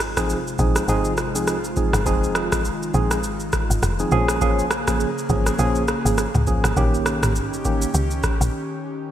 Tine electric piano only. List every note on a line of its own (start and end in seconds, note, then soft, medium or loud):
0.17 0.38 F3 medium
0.17 0.38 C4 medium
0.17 0.38 D#4 medium
0.17 0.38 G#4 medium
0.59 0.82 F3 medium
0.59 0.82 C4 medium
0.59 0.82 D#4 medium
0.59 0.83 G#4 medium
0.88 1.12 F3 medium
0.88 1.12 C4 medium
0.88 1.12 D#4 medium
0.88 1.12 G#4 loud
1.35 1.56 F3 medium
1.35 1.56 C4 medium
1.35 1.56 D#4 medium
1.35 1.56 G#4 medium
1.77 2.00 F3 medium
1.77 2.00 C4 medium
1.77 2.00 D#4 medium
1.77 2.00 G#4 medium
2.06 2.61 F3 medium
2.06 2.61 C4 medium
2.06 2.61 D#4 medium
2.06 2.61 G#4 loud
2.94 3.17 F3 medium
2.94 3.18 C4 medium
2.94 3.18 D#4 medium
2.94 3.18 G#4 medium
3.99 4.10 F3 medium
3.99 4.20 C4 medium
3.99 4.21 D#4 medium
3.99 4.11 G#4 medium
4.12 4.39 F3 medium
4.12 4.39 A#3 medium
4.12 4.39 C#4 medium
4.12 4.40 G#4 loud
4.41 4.64 F3 medium
4.41 4.65 A#3 medium
4.41 4.65 C#4 medium
4.41 4.65 G#4 loud
4.88 5.09 F3 medium
4.88 5.09 A#3 medium
4.88 5.09 C#4 medium
4.88 5.09 G#4 medium
5.29 5.53 F3 medium
5.29 5.53 A#3 medium
5.29 5.53 C#4 medium
5.29 5.53 G#4 medium
5.59 5.82 F3 loud
5.59 5.82 A#3 medium
5.59 5.82 C#4 medium
5.59 5.82 G#4 loud
6.05 6.26 F3 medium
6.05 6.26 A#3 medium
6.05 6.26 C#4 medium
6.05 6.27 G#4 medium
6.47 6.70 F3 medium
6.47 6.70 A#3 medium
6.47 6.71 C#4 medium
6.47 6.71 G#4 medium
6.77 7.32 D#3 medium
6.77 7.32 A#3 medium
6.77 7.32 C#4 medium
6.77 7.32 G4 loud
7.65 7.88 D#3 medium
7.65 7.88 A#3 medium
7.65 7.88 C#4 medium
7.65 7.88 G4 medium